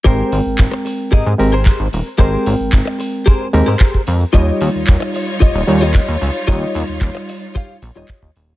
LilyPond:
<<
  \new Staff \with { instrumentName = "Clean electric guitar" } { \time 4/4 \key aes \major \tempo 4 = 112 <g' aes' bes' c''>8 r4. <g' aes' bes' ees''>8 r16 <g' aes' bes' c''>8. r8 | <g' aes' bes' c''>8 r4. <g' aes' bes' c''>8 r16 <g' aes' bes' c''>8. r8 | <f' g' des'' ees''>8 r4. <f' g' des'' ees''>8 r16 <f' g' des'' ees''>8. r8 | <f' g' des'' ees''>8 r4. <f' g' des'' f''>8 r16 <f' g' des'' ees''>8. r8 | }
  \new Staff \with { instrumentName = "Reed electric piano" } { \time 4/4 \key aes \major <aes c' bes' g''>2~ <aes c' bes' g''>8 <aes c' g' bes'>16 r4 r16 | <aes c' bes' g''>2~ <aes c' bes' g''>8 <aes c' g' bes'>16 r4 r16 | <g ees' f' des''>2~ <g ees' f' des''>8 <g ees' f' des''>16 r4 r16 | <g ees' f' des''>2~ <g ees' f' des''>8 r16 <g ees' f' des''>16 r4 | }
  \new Staff \with { instrumentName = "String section" } { \time 4/4 \key aes \major r1 | r1 | <g ees' f' des''>1~ | <g ees' f' des''>1 | }
  \new Staff \with { instrumentName = "Analog synth bass" } { \clef bass \time 4/4 \key aes \major aes,,16 r16 aes,,16 aes,,16 aes,,16 r8. aes,16 aes,16 aes,,8 r16 aes,,16 ees,,16 r16 | aes,,16 r16 aes,,16 aes,,16 aes,,16 r4 r16 ees,16 aes,16 r8 f,16 r16 | ees,16 r16 ees,16 ees,16 ees,16 r8. ees,,16 ees,,16 ees,8 r16 ees,16 des,16 r16 | ees,16 r16 ees,16 ees,16 ees,16 r4 r16 bes,,16 ees,,16 r16 ees,16 ees,,16 r16 | }
  \new DrumStaff \with { instrumentName = "Drums" } \drummode { \time 4/4 bd8 hho8 <hc bd>8 hho8 bd8 hho8 <hc bd>8 hho8 | bd8 hho8 <hc bd>8 hho8 bd8 hho8 <hc bd>16 bd16 hho8 | bd8 hho8 <hc bd>8 hho8 bd8 hho8 <hc bd>8 hho8 | bd8 hho8 <hc bd>8 hho8 bd8 hho8 <hc bd>16 bd16 hho8 | }
>>